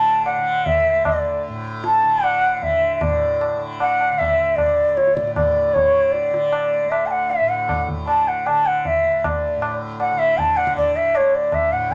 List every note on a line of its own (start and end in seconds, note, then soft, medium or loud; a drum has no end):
0.00 0.93 D2 medium
0.00 1.48 A2 medium
0.00 0.38 D3 medium
0.00 0.23 A5 loud
0.25 0.68 F#5 medium
0.25 tabla na medium
0.38 2.03 D3 medium
0.66 1.05 E5 medium
0.66 tabla tin medium
0.66 tabla ge medium
0.93 4.66 D2 medium
1.05 1.42 D5 medium
1.05 tabla na loud
1.05 tabla ge medium
1.48 3.02 A2 medium
1.84 2.26 A5 loud
1.84 tabla te medium
2.03 2.59 D3 medium
2.24 2.57 F#5 loud
2.24 tabla na medium
2.57 3.55 D3 medium
2.57 2.64 F#5 soft
2.62 2.95 E5 medium
2.62 tabla tin medium
2.62 tabla ge medium
2.95 3.04 E5 medium
3.01 5.21 A2 medium
3.01 3.61 D5 medium
3.01 tabla na medium
3.01 tabla ge medium
3.41 tabla na medium
3.55 4.12 D3 medium
3.80 4.20 F#5 loud
3.80 tabla na medium
4.01 tabla na medium
4.12 5.76 D3 medium
4.18 4.58 E5 medium
4.18 tabla tin medium
4.18 tabla ge medium
4.56 4.98 D5 medium
4.56 tabla na medium
4.56 tabla ge medium
4.66 6.84 D2 medium
4.97 5.16 C#5 medium
4.97 tabla te medium
5.07 tabla te medium
5.14 5.34 D5 medium
5.14 tabla ke medium
5.21 7.39 A2 medium
5.27 tabla te medium
5.35 5.75 D5 medium
5.35 tabla na medium
5.35 tabla ge medium
5.74 6.31 D3 medium
5.74 6.14 C#5 medium
5.74 tabla tin medium
5.74 tabla ge medium
6.12 6.92 D5 medium
6.12 tabla te medium
6.31 7.94 D3 medium
6.31 tabla te medium
6.53 tabla na medium
6.84 9.02 D2 medium
6.90 7.08 E5 medium
6.90 tabla na medium
7.07 7.13 A5 medium
7.11 7.32 F#5 medium
7.11 tabla na medium
7.30 7.50 E5 medium
7.30 tabla tin medium
7.40 9.56 A2 medium
7.49 7.88 F#5 medium
7.69 tabla na medium
7.69 tabla ge medium
7.88 tabla ge medium
7.94 8.48 D3 medium
8.07 8.29 A5 medium
8.07 tabla na medium
8.28 8.48 F#5 medium
8.46 10.11 D3 medium
8.46 8.68 A5 medium
8.46 tabla na medium
8.66 8.88 F#5 medium
8.85 9.20 E5 medium
8.85 tabla tin medium
8.85 tabla ge medium
9.02 11.18 D2 medium
9.20 9.27 E5 medium
9.24 9.76 D5 medium
9.24 tabla na medium
9.24 tabla ge medium
9.56 11.71 A2 medium
9.62 tabla na medium
10.00 10.20 F#5 medium
10.00 tabla na medium
10.11 10.65 D3 medium
10.19 10.39 E5 medium
10.38 10.58 A5 medium
10.38 tabla tin medium
10.38 tabla ge medium
10.57 10.76 F#5 medium
10.57 tabla na medium
10.65 11.94 D3 medium
10.65 tabla ke medium
10.77 10.98 D5 medium
10.77 tabla na medium
10.77 tabla ge medium
10.96 11.18 E5 medium
11.15 11.94 D2 medium
11.15 11.37 C#5 medium
11.15 tabla na medium
11.35 11.56 D5 medium
11.52 11.74 E5 medium
11.52 tabla na medium
11.52 tabla ge medium
11.71 11.94 A2 medium
11.71 11.93 F#5 medium
11.91 tabla tin medium
11.91 tabla ge medium